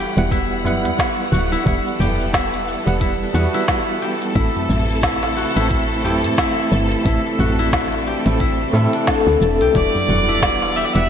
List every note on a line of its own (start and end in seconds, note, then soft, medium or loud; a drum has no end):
0.00 11.09 E3 medium
0.00 0.12 G3 medium
0.00 4.32 G3 medium
0.00 0.12 B3 medium
0.00 4.32 B3 medium
0.00 0.13 E4 medium
0.00 0.31 E4 medium
0.00 0.13 F#4 medium
0.00 1.38 G4 medium
0.00 4.32 F#5 medium
0.16 0.86 E1 medium
0.16 0.61 G3 medium
0.16 0.62 B3 medium
0.16 0.62 E4 medium
0.16 0.62 F#5 loud
0.16 closed hi-hat soft
0.16 shaker soft
0.31 0.99 E4 loud
0.31 kick loud
0.31 closed hi-hat medium
0.31 shaker soft
0.51 tabla tin medium
0.63 1.62 G3 medium
0.63 1.62 B3 medium
0.63 1.63 E4 medium
0.63 1.64 F#5 loud
0.63 tabla na medium
0.63 tabla ge medium
0.63 shaker medium
0.84 0.94 E2 medium
0.84 closed hi-hat soft
0.84 shaker soft
0.99 1.52 E4 medium
0.99 kick loud
0.99 snare loud
0.99 closed hi-hat medium
0.99 tabla na medium
0.99 shaker soft
1.32 1.56 D1 loud
1.32 2.06 F#4 loud
1.32 shaker medium
1.52 1.66 E4 loud
1.52 closed hi-hat soft
1.52 tabla na soft
1.52 shaker soft
1.64 1.79 E1 medium
1.64 2.81 G3 medium
1.64 2.82 B3 medium
1.64 2.82 E4 medium
1.64 2.33 E4 medium
1.64 9.71 A4 medium
1.64 kick loud
1.64 closed hi-hat medium
1.64 shaker medium
1.68 2.83 F#5 medium
1.87 shaker soft
2.00 2.76 E1 medium
2.00 3.41 G4 medium
2.00 tabla tin medium
2.00 tabla ge loud
2.00 shaker medium
2.21 shaker soft
2.34 3.01 E4 loud
2.34 kick loud
2.34 snare loud
2.34 closed hi-hat medium
2.34 shaker medium
2.54 closed hi-hat soft
2.68 shaker medium
2.85 3.27 E1 medium
2.85 3.30 G3 medium
2.85 3.31 B3 medium
2.85 3.31 E4 medium
2.85 3.32 F#5 medium
2.85 closed hi-hat soft
2.85 shaker soft
3.01 3.54 E4 medium
3.01 kick loud
3.01 closed hi-hat medium
3.01 shaker soft
3.32 3.47 E2 medium
3.32 4.31 G3 medium
3.32 4.32 B3 medium
3.32 4.32 E4 medium
3.32 4.08 F#4 loud
3.32 shaker medium
3.36 4.33 F#4 loud
3.54 3.68 E4 loud
3.54 closed hi-hat soft
3.54 shaker soft
3.68 4.35 E4 medium
3.68 kick loud
3.68 snare loud
3.68 closed hi-hat medium
3.68 shaker soft
4.02 5.43 G4 medium
4.02 tabla tin medium
4.02 shaker medium
4.22 closed hi-hat soft
4.22 shaker soft
4.33 4.48 A1 loud
4.33 9.71 C3 medium
4.33 5.50 A3 medium
4.33 9.71 A3 medium
4.33 5.51 C4 medium
4.33 5.02 E4 loud
4.33 5.52 E4 medium
4.33 7.03 E4 medium
4.33 kick loud
4.33 closed hi-hat medium
4.33 shaker soft
4.37 5.53 A4 medium
4.56 tabla ge medium
4.56 shaker soft
4.69 5.45 A1 medium
4.69 tabla tin medium
4.69 tabla ge loud
4.69 shaker medium
4.90 shaker soft
5.03 5.56 E4 medium
5.03 kick loud
5.03 snare loud
5.03 closed hi-hat medium
5.03 shaker soft
5.23 snare soft
5.23 closed hi-hat soft
5.23 tabla na medium
5.37 6.10 F#4 medium
5.37 shaker medium
5.55 6.25 A1 medium
5.55 6.00 A3 medium
5.55 6.01 C4 medium
5.55 5.70 E4 loud
5.55 6.01 E4 medium
5.55 6.01 A4 loud
5.55 closed hi-hat soft
5.55 shaker soft
5.70 6.37 E4 medium
5.70 kick loud
5.70 closed hi-hat medium
5.70 shaker soft
5.91 tabla tin medium
6.03 7.01 A3 medium
6.03 7.02 C4 medium
6.03 7.03 E4 medium
6.03 7.46 G4 medium
6.03 7.03 A4 loud
6.03 tabla na medium
6.03 tabla ge medium
6.03 shaker medium
6.24 6.33 A2 medium
6.24 closed hi-hat soft
6.24 shaker soft
6.38 7.05 E4 loud
6.38 kick loud
6.38 snare loud
6.38 closed hi-hat medium
6.38 tabla na medium
6.38 shaker soft
6.72 6.96 G1 loud
6.72 shaker medium
6.92 closed hi-hat soft
6.92 tabla na soft
6.92 shaker soft
7.03 7.18 A1 medium
7.03 8.21 A3 medium
7.03 8.21 C4 medium
7.03 9.73 D4 medium
7.03 7.59 E4 medium
7.03 8.22 E4 medium
7.03 8.23 A4 medium
7.03 kick loud
7.03 closed hi-hat medium
7.03 shaker soft
7.26 tabla na soft
7.26 shaker soft
7.39 8.15 A1 medium
7.39 8.13 F#4 loud
7.39 tabla tin medium
7.39 tabla ge loud
7.39 shaker medium
7.59 7.73 E4 loud
7.59 shaker soft
7.73 8.40 E4 medium
7.73 kick loud
7.73 snare loud
7.73 closed hi-hat medium
7.73 shaker soft
7.93 closed hi-hat soft
7.93 tabla na medium
8.07 9.61 G4 medium
8.07 shaker medium
8.25 8.66 A1 medium
8.25 8.70 A3 medium
8.25 8.70 C4 medium
8.25 8.71 E4 medium
8.25 8.71 A4 loud
8.25 closed hi-hat soft
8.25 shaker soft
8.40 9.75 E4 loud
8.40 kick loud
8.40 closed hi-hat medium
8.40 shaker soft
8.72 8.87 A2 medium
8.72 9.71 A3 medium
8.72 9.71 C4 medium
8.72 9.72 E4 medium
8.72 9.73 A4 medium
8.72 tabla na medium
8.72 shaker medium
8.93 11.09 D4 medium
8.93 closed hi-hat soft
8.93 shaker soft
9.07 9.42 A4 loud
9.07 kick loud
9.07 snare medium
9.07 closed hi-hat medium
9.07 shaker soft
9.27 9.36 D2 loud
9.27 shaker soft
9.41 9.62 E1 loud
9.41 11.09 A4 medium
9.41 tabla tin medium
9.41 shaker medium
9.61 9.70 C2 medium
9.61 10.15 G4 loud
9.61 closed hi-hat soft
9.61 shaker soft
9.73 9.88 E1 medium
9.73 10.90 G3 medium
9.73 11.09 G3 medium
9.73 10.91 B3 medium
9.73 11.09 B3 medium
9.73 10.28 E4 medium
9.73 10.92 E4 medium
9.73 10.92 F#4 medium
9.73 10.78 D5 loud
9.73 11.09 F#5 medium
9.73 kick loud
9.73 closed hi-hat medium
9.73 shaker soft
9.95 tabla ge medium
9.95 shaker soft
10.08 10.85 E1 medium
10.08 10.83 F#4 medium
10.08 tabla tin medium
10.08 tabla ge loud
10.08 shaker medium
10.29 10.42 E4 loud
10.29 shaker soft
10.42 11.09 E4 medium
10.42 kick loud
10.42 snare loud
10.42 closed hi-hat medium
10.42 shaker soft
10.62 snare soft
10.62 closed hi-hat soft
10.62 tabla na medium
10.76 11.09 G4 medium
10.76 10.86 E5 medium
10.76 shaker medium
10.85 10.95 D5 medium
10.93 11.09 E1 medium
10.93 11.09 G3 medium
10.93 11.09 B3 medium
10.93 11.09 E4 medium
10.93 11.09 E5 loud
10.93 11.09 F#5 loud
10.93 closed hi-hat soft
10.93 shaker soft